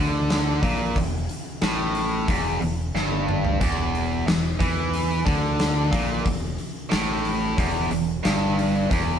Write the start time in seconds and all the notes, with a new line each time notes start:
Already playing: D2 D3
0.30 snare, open hi-hat
0.63 A#1 A#2, kick, open hi-hat
0.96 E1 E2, kick, open hi-hat
1.29 open hi-hat
1.62 A1 A2, snare, open hi-hat
1.95 open hi-hat
2.28 E1 E2, kick, open hi-hat
2.61 E1 E2, open hi-hat
2.95 G1 G2, snare
3.12 high tom
3.29 mid tom
3.45 floor tom
3.61 E1 E2, kick, open hi-hat, splash
3.95 open hi-hat
4.27 E1 E2, snare, open hi-hat
4.60 E2 E3, kick, open hi-hat
4.94 open hi-hat
5.26 D2 D3, kick, open hi-hat
5.59 snare, open hi-hat
5.92 A#1 A#2, kick, open hi-hat
6.24 E1 E2, kick, open hi-hat
6.58 open hi-hat
6.91 A1 A2, snare, open hi-hat
7.25 open hi-hat
7.57 E1 E2, kick, open hi-hat
7.91 E1 E2, open hi-hat
8.24 G1 G2, snare, open hi-hat
8.59 open hi-hat
8.90 E1 E2, kick, open hi-hat